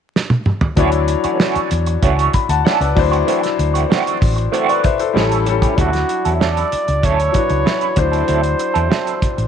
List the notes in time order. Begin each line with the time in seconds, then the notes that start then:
0.16 snare
0.30 high tom
0.46 mid tom
0.61 floor tom
0.76 D2 E3 F#3 A3 C#4 D4 E4 F#4 C#5, kick, closed hi-hat
0.92 muted clean electric guitar stroke, closed hi-hat
1.08 muted clean electric guitar stroke, closed hi-hat
1.24 E3 A3 C#4 F#4, muted fingered electric bass stroke, closed hi-hat
1.40 E3 A3 C#4 F#4, snare
1.55 muted fingered electric bass stroke, closed hi-hat
1.71 E2, muted clean electric guitar stroke, closed hi-hat
1.86 muted clean electric guitar stroke, closed hi-hat
2.02 C#2 E3 A3 C#4 F#4, kick, closed hi-hat
2.19 closed hi-hat
2.34 B5, muted clean electric guitar stroke, kick, closed hi-hat
2.49 D2 F#5 A5, muted clean electric guitar stroke, closed hi-hat
2.65 E3 A3 C#4 A4 D5 F#5, snare
2.81 C#2 B4 D5, closed hi-hat
2.95 D2 F#3 D4 E4, muted clean electric guitar stroke, kick, open hi-hat
2.99 C5
3.11 E3 A3 C4 F#4, closed hi-hat
3.26 E3 A3 C4 F#4, closed hi-hat
3.43 muted clean electric guitar stroke, snare, closed hi-hat
3.58 D2, muted clean electric guitar stroke, closed hi-hat
3.74 E3 A3 C4 F#4, closed hi-hat
3.89 E3 A3 C4 F#4, snare
4.07 closed hi-hat
4.20 A1, muted clean electric guitar stroke, kick, open hi-hat
4.36 muted clean electric guitar stroke, closed hi-hat
4.52 E3 A3 C4 F#4 A4 C5, closed hi-hat
4.69 B4 D5, closed hi-hat
4.83 C5 E5, muted clean electric guitar stroke, kick, closed hi-hat
4.99 A4 C5, muted clean electric guitar stroke, closed hi-hat
5.13 A1 E3 G3 A3 C#4 E4 A4, snare
5.32 closed hi-hat
5.46 G3 C#4 E4 A4, muted clean electric guitar stroke, closed hi-hat
5.62 E3 A3 C#4 G4, kick, closed hi-hat
5.76 D2 F#3 C#4 D4 E4 F#4 A4 D5, kick, closed hi-hat
5.92 muted clean electric guitar stroke, snare, closed hi-hat
6.09 muted clean electric guitar stroke, closed hi-hat
6.25 E2 F#3 C#4 E4 A4, closed hi-hat
6.35 E5
6.40 F#3 C#4 E4 A4 D5, snare
6.57 closed hi-hat
6.72 muted fingered electric bass stroke, closed hi-hat
6.88 C#2, muted clean electric guitar stroke, closed hi-hat
7.02 D2 F#3 C#4 E4 A4 C#5, kick, closed hi-hat
7.20 closed hi-hat
7.32 F#3 D4 E4 B4, muted clean electric guitar stroke, kick, closed hi-hat
7.43 C#5
7.50 C#2, muted clean electric guitar stroke, closed hi-hat
7.65 F#3 C#4 E4 B4, snare
7.81 closed hi-hat
7.95 D2 F#3 D4 E4 C5, muted clean electric guitar stroke, kick, closed hi-hat
8.00 C5
8.12 F#3 C4 E4 A4, closed hi-hat
8.27 D2 F#3 C4 E4 A4, closed hi-hat
8.43 muted clean electric guitar stroke, closed hi-hat
8.59 muted clean electric guitar stroke, closed hi-hat
8.74 E2 F#3 C4 E4 A4, closed hi-hat
8.89 F#3 C4 E4 A4, snare
9.07 closed hi-hat
9.21 muted clean electric guitar stroke, muted fingered electric bass stroke, kick, closed hi-hat
9.37 A1, muted clean electric guitar stroke, closed hi-hat